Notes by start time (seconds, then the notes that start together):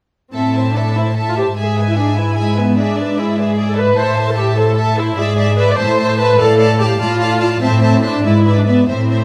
0.33 A2 C4 A4 E5 A5
0.55 C5 E5 A5
0.75 D4 A4 E5 A5
0.96 E4 C5 E5 A5
1.16 A4 E5 A5
1.28 F4
1.37 G4 C5 E5 A5
1.57 G#2 G#4 E5 G#5
1.77 B4 E5 G#5
1.88 E4
1.96 D4 G#4 E5 G#5
2.16 E4 B4 E5 G#5
2.36 G#4 E5 G#5
2.56 B3 B4 E5 G#5
2.77 D4 G#4 D5 E5
2.97 B4 D5 E5
3.17 E4 G#4 D5 E5
3.38 G#4 B4 D5 E5
3.56 G#4 D5 E5
3.68 A4
3.76 B4 D5 E5
3.96 A2 A4 C5 E5 A5
4.15 C5 E5 A5
4.28 A4
4.36 G4 A4 E5 A5
4.56 A4 C5 E5 A5
4.76 A4 E5 A5
4.95 E4 C5 E5 A5
5.15 G#2 G#4 D5 E5
5.37 D5 E5
5.57 B4 D5 E5
5.70 D5
5.77 A2 C5 E5 A5
5.98 C5 E5 A5
6.18 B4 C5 E5 A5
6.38 A2 A4 D5 F5 A5
6.59 D5 F5 A5
6.79 G4 D5 F5 A5
6.99 A2 F4 D5 F5 A5
7.20 D5 F5 A5
7.39 D5 F5 A5
7.61 A2 C4 C5 E5 A5
7.82 C5 E5 A5
8.03 D4 C5 E5 A5
8.24 G#2 E4 B4 D5 E5
8.45 B4 D5 E5
8.57 D4
8.66 B3 B4 D5 E5
8.88 A2 C4 C5 E5
9.09 C5 E5